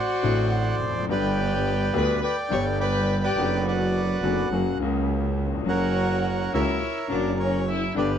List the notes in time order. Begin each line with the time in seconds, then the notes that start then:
Already playing: F#4 C5 D5 F#5
0.22 A1 A2 D3 A3 C4
0.26 F#4
0.81 F1
0.89 E2
0.95 F2
1.03 F#2
1.08 G1 G2 D3 G3 B3 G4 B4 D5 G5
1.93 D2 D3 G3 B3 G4 B4
1.98 B5
2.22 B4 D5 G5 B5
2.48 G1 G2 D3 G3 B3 C#5
2.53 G4 C#6
2.80 B4 D5 G5 B5
3.23 G4 B4 D5 G5
3.36 F#1 F#2 D3 F#3 B3
3.40 F#4
3.65 F#4 B4 D5
3.69 F#5
4.22 F#1 F#2 D3 F#3 B3 F#4
4.50 F#1 F#2 C#3 F#3 A#3 F#4
4.79 C#2 C#3 F#3 A#3
4.84 F#4
5.46 D#2
5.54 E2
5.60 F2
5.65 F#1 F#2 C#3 F#3 A#3 F#4 F#5
5.69 A#4 C#5
6.52 C#2 C#3 F#3 A#3 E4 F#4 A#4 C#5 E5
7.08 F#1 F#2 C#3 F#3 A#3 D4 D5
7.12 F#4
7.39 C#4 C#5
7.68 E4 E5
7.94 G1 G2 D3 G3 B3 D4 B4 D5
7.98 G4 B4